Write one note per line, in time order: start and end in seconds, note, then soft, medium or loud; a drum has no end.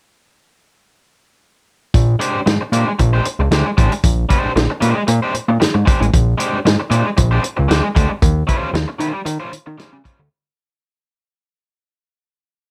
1.94 2.16 A#1 loud
1.94 kick loud
1.94 closed hi-hat medium
2.19 2.38 G#3 medium
2.19 2.39 D4 medium
2.19 2.39 G4 medium
2.19 2.39 C5 loud
2.19 closed hi-hat medium
2.35 2.40 G#2 soft
2.46 2.59 G#2 medium
2.46 muted overdriven electric guitar stroke soft
2.46 snare medium
2.46 closed hi-hat medium
2.61 muted overdriven electric guitar stroke soft
2.72 2.85 A#2 loud
2.72 2.91 G#3 medium
2.72 2.88 D4 medium
2.72 2.88 G4 medium
2.72 2.87 C5 medium
2.72 closed hi-hat medium
2.88 muted overdriven electric guitar stroke soft
2.99 3.21 A#1 loud
2.99 muted overdriven electric guitar stroke soft
2.99 kick medium
2.99 closed hi-hat medium
3.13 3.24 G#3 medium
3.13 3.24 D4 medium
3.13 3.25 G4 medium
3.13 3.25 C5 medium
3.25 muted overdriven electric guitar stroke soft
3.25 closed hi-hat medium
3.39 3.49 C#2 medium
3.39 muted overdriven electric guitar stroke soft
3.51 3.63 D2 medium
3.51 3.70 G#3 medium
3.51 3.66 D4 medium
3.51 3.66 G4 medium
3.51 3.65 C5 medium
3.51 snare medium
3.51 closed hi-hat medium
3.66 muted overdriven electric guitar stroke soft
3.77 3.90 A1 medium
3.77 3.92 G#3 medium
3.77 3.92 D4 medium
3.77 3.91 G4 medium
3.77 3.91 C5 medium
3.77 kick medium
3.77 closed hi-hat medium
3.92 muted overdriven electric guitar stroke soft
3.92 closed hi-hat medium
4.04 4.26 A#1 medium
4.04 kick loud
4.04 closed hi-hat loud
4.29 4.50 G#3 medium
4.29 4.50 D4 medium
4.29 4.51 G4 loud
4.29 4.51 C5 medium
4.29 kick medium
4.29 closed hi-hat medium
4.45 4.50 A#1 soft
4.56 4.68 A#1 medium
4.56 muted overdriven electric guitar stroke soft
4.56 snare loud
4.56 closed hi-hat medium
4.70 muted overdriven electric guitar stroke soft
4.81 4.94 A#2 loud
4.81 5.02 G#3 medium
4.81 4.96 D4 medium
4.81 4.95 G4 medium
4.81 4.95 C5 medium
4.81 closed hi-hat medium
4.96 muted overdriven electric guitar stroke soft
5.07 5.20 A#2 loud
5.07 muted overdriven electric guitar stroke soft
5.07 closed hi-hat medium
5.23 5.33 G#3 medium
5.23 5.33 D4 medium
5.23 5.33 G4 medium
5.23 5.34 C5 medium
5.34 5.40 A#2 soft
5.34 muted overdriven electric guitar stroke soft
5.34 closed hi-hat medium
5.48 5.58 A#2 medium
5.48 muted overdriven electric guitar stroke soft
5.60 5.66 G#2 soft
5.60 muted overdriven electric guitar stroke soft
5.60 snare medium
5.60 closed hi-hat medium
5.74 5.84 G#2 medium
5.74 muted overdriven electric guitar stroke soft
5.86 6.04 G#3 medium
5.86 6.01 D4 medium
5.86 6.00 G4 medium
5.86 5.99 C5 medium
5.86 kick loud
5.86 closed hi-hat medium
6.01 6.10 A1 medium
6.01 muted overdriven electric guitar stroke soft
6.01 closed hi-hat soft
6.14 6.35 A#1 medium
6.14 kick loud
6.14 closed hi-hat medium
6.38 6.56 G#3 medium
6.38 6.57 D4 medium
6.38 6.57 G4 medium
6.38 6.57 C5 medium
6.38 closed hi-hat medium
6.53 6.58 G#2 soft
6.65 6.77 G#2 loud
6.65 muted overdriven electric guitar stroke soft
6.65 snare loud
6.65 closed hi-hat medium
6.80 muted overdriven electric guitar stroke soft
6.90 7.03 A#2 loud
6.90 7.09 G#3 medium
6.90 7.06 D4 medium
6.90 7.05 G4 medium
6.90 7.05 C5 medium
6.90 closed hi-hat medium
7.06 muted overdriven electric guitar stroke soft
7.17 7.39 A#1 loud
7.17 muted overdriven electric guitar stroke soft
7.17 kick medium
7.17 closed hi-hat loud
7.31 7.42 G#3 medium
7.31 7.42 D4 medium
7.31 7.42 G4 medium
7.31 7.43 C5 medium
7.43 muted overdriven electric guitar stroke soft
7.43 closed hi-hat medium
7.57 7.68 C#2 medium
7.57 muted overdriven electric guitar stroke soft
7.68 7.82 D2 medium
7.68 7.87 G#3 medium
7.68 7.83 D4 medium
7.68 7.83 G4 medium
7.68 7.82 C5 medium
7.68 snare loud
7.68 closed hi-hat medium
7.83 muted overdriven electric guitar stroke soft
7.95 8.08 D2 medium
7.95 8.10 G#3 medium
7.95 8.10 D4 medium
7.95 8.09 G4 medium
7.95 8.09 C5 medium
7.95 kick medium
7.95 closed hi-hat medium
8.10 muted overdriven electric guitar stroke soft
8.22 8.44 D#2 medium
8.22 kick loud
8.22 closed hi-hat loud
8.47 8.68 G3 medium
8.47 8.69 C#4 medium
8.47 8.69 F4 medium
8.47 8.69 C5 loud
8.47 kick medium
8.47 closed hi-hat medium
8.62 8.67 D#2 soft
8.73 8.86 D#2 medium
8.73 muted overdriven electric guitar stroke soft
8.73 snare loud
8.73 closed hi-hat medium
8.88 muted overdriven electric guitar stroke soft
8.99 9.12 D#3 loud
8.99 9.20 G3 medium
8.99 9.13 C#4 medium
8.99 9.12 F4 medium
8.99 9.12 C5 medium
8.99 closed hi-hat medium
9.13 muted overdriven electric guitar stroke soft
9.25 9.38 D#3 loud
9.25 muted overdriven electric guitar stroke soft
9.25 closed hi-hat loud
9.40 9.50 G3 medium
9.40 9.50 C#4 medium
9.40 9.51 F4 medium
9.40 9.51 C5 medium
9.51 9.58 D#3 soft
9.51 muted overdriven electric guitar stroke soft
9.51 closed hi-hat medium
9.66 9.77 D#3 medium
9.66 muted overdriven electric guitar stroke soft
9.78 9.85 C#3 soft
9.78 9.96 G3 medium
9.78 9.93 C#4 medium
9.78 9.92 F4 medium
9.78 9.91 C5 medium
9.78 snare medium
9.78 closed hi-hat medium
9.92 10.03 C#3 medium
9.92 muted overdriven electric guitar stroke soft
10.04 10.19 G3 medium
10.04 10.19 C#4 medium
10.04 10.19 F4 medium
10.04 10.18 C5 medium
10.04 kick medium
10.04 closed hi-hat medium
10.19 10.29 D2 medium
10.19 muted overdriven electric guitar stroke soft